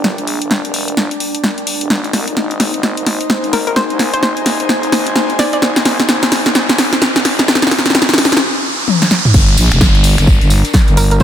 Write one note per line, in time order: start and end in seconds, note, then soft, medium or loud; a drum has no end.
0.00 0.16 G1 loud
0.00 1.90 D4 medium
0.00 2.66 A#4 medium
0.00 1.90 G5 medium
0.04 snare medium
0.18 0.39 A#1 medium
0.18 closed hi-hat soft
0.27 open hi-hat loud
0.42 0.63 G1 loud
0.42 closed hi-hat medium
0.51 snare medium
0.65 0.96 F1 loud
0.65 closed hi-hat soft
0.74 open hi-hat loud
0.88 closed hi-hat medium
0.97 1.09 G1 loud
0.97 snare medium
1.11 closed hi-hat soft
1.20 open hi-hat loud
1.35 closed hi-hat medium
1.44 snare medium
1.58 closed hi-hat soft
1.67 open hi-hat loud
1.81 1.89 F1 loud
1.81 closed hi-hat medium
1.90 2.12 G#1 medium
1.90 8.41 D#4 loud
1.90 snare medium
1.90 riser medium
2.04 closed hi-hat soft
2.13 2.25 C2 loud
2.13 snare medium
2.13 open hi-hat loud
2.28 2.35 D#1 loud
2.28 closed hi-hat medium
2.37 2.72 G#1 medium
2.37 8.41 C5 medium
2.37 snare medium
2.51 closed hi-hat soft
2.60 snare medium
2.60 open hi-hat loud
2.74 2.95 G#1 loud
2.74 closed hi-hat medium
2.83 snare medium
2.97 3.18 G#1 medium
2.97 closed hi-hat soft
3.07 snare medium
3.07 open hi-hat loud
3.21 8.41 G#5 medium
3.21 closed hi-hat medium
3.30 snare medium
3.44 3.88 G#1 medium
3.44 closed hi-hat soft
3.53 3.62 A#4 medium
3.53 snare medium
3.53 open hi-hat loud
3.67 3.73 A#4 medium
3.67 closed hi-hat medium
3.76 3.88 C5 medium
3.76 snare medium
3.90 4.11 C2 loud
3.90 closed hi-hat soft
3.99 snare medium
3.99 open hi-hat loud
4.14 4.35 G#1 loud
4.14 4.19 C5 medium
4.14 closed hi-hat medium
4.23 4.32 C5 medium
4.23 snare medium
4.37 4.68 D#1 loud
4.37 closed hi-hat medium
4.46 snare medium
4.46 open hi-hat loud
4.60 closed hi-hat medium
4.69 4.91 D#1 loud
4.69 snare medium
4.83 closed hi-hat medium
4.92 5.38 G#1 loud
4.92 snare medium
4.92 open hi-hat loud
5.07 closed hi-hat medium
5.16 snare medium
5.30 closed hi-hat soft
5.39 5.48 D5 medium
5.39 snare medium
5.39 open hi-hat loud
5.53 5.59 D5 medium
5.53 closed hi-hat medium
5.62 5.84 G#1 medium
5.62 snare medium
5.76 snare medium
5.76 closed hi-hat soft
5.85 5.97 C2 loud
5.85 snare medium
5.85 open hi-hat loud
6.00 6.07 D#1 loud
6.00 snare medium
6.00 closed hi-hat medium
6.09 6.44 G#1 loud
6.09 snare medium
6.23 snare medium
6.23 closed hi-hat medium
6.32 snare loud
6.32 open hi-hat loud
6.46 6.67 G#1 loud
6.46 snare medium
6.46 closed hi-hat medium
6.55 snare medium
6.69 6.90 G#1 loud
6.69 snare medium
6.69 closed hi-hat medium
6.78 snare loud
6.78 open hi-hat loud
6.93 snare medium
6.93 closed hi-hat medium
7.02 snare loud
7.16 7.60 G#1 loud
7.16 snare medium
7.16 closed hi-hat soft
7.25 snare loud
7.25 open hi-hat loud
7.39 snare medium
7.39 closed hi-hat medium
7.48 snare loud
7.55 snare medium
7.62 7.83 C2 loud
7.62 snare medium
7.62 closed hi-hat soft
7.67 snare medium
7.71 snare loud
7.71 open hi-hat loud
7.79 snare medium
7.86 8.07 G#1 loud
7.86 snare medium
7.86 closed hi-hat medium
7.90 snare medium
7.95 snare loud
8.02 snare medium
8.09 8.40 D#1 loud
8.09 snare medium
8.09 closed hi-hat medium
8.13 snare medium
8.18 snare loud
8.18 open hi-hat loud
8.25 snare medium
8.32 snare medium
8.32 closed hi-hat medium
8.37 snare medium
8.88 high tom medium
9.02 snare medium
9.11 snare medium
9.25 mid tom medium
9.34 9.56 G1 loud
9.34 11.23 D4 medium
9.34 kick loud
9.34 crash loud
9.34 tambourine medium
9.34 downlifter medium
9.48 closed hi-hat soft
9.48 tambourine soft
9.57 9.69 A#1 loud
9.57 open hi-hat loud
9.57 tambourine loud
9.71 9.79 F1 loud
9.71 finger snap medium
9.71 closed hi-hat medium
9.71 tambourine soft
9.81 10.16 G1 loud
9.81 kick loud
9.81 snare loud
9.81 tambourine soft
9.91 11.23 A#4 medium
9.95 closed hi-hat medium
9.95 tambourine soft
10.04 open hi-hat loud
10.04 tambourine medium
10.18 10.39 G1 loud
10.18 finger snap medium
10.18 closed hi-hat medium
10.18 tambourine soft
10.27 kick loud
10.27 tambourine medium
10.41 10.63 G1 loud
10.41 closed hi-hat medium
10.41 tambourine soft
10.50 open hi-hat loud
10.50 tambourine medium
10.55 11.23 G5 medium
10.65 closed hi-hat medium
10.65 tambourine soft
10.73 kick loud
10.73 snare loud
10.73 tambourine medium
10.87 11.23 G1 loud
10.87 closed hi-hat soft
10.87 tambourine soft
10.97 11.06 A#4 medium
10.97 open hi-hat loud
10.97 tambourine loud
11.11 11.17 A#4 medium
11.11 closed hi-hat medium
11.11 tambourine soft
11.20 tambourine soft